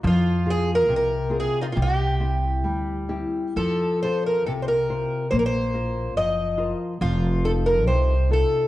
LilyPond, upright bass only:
\new Staff \with { instrumentName = "Upright bass" } { \clef bass \time 2/4 \key f \phrygian \tempo 4 = 70 f,4 c,4 | c,4 d,4 | f,4 c,4 | bes,,4 ges,,4 |
f,,4 c,4 | }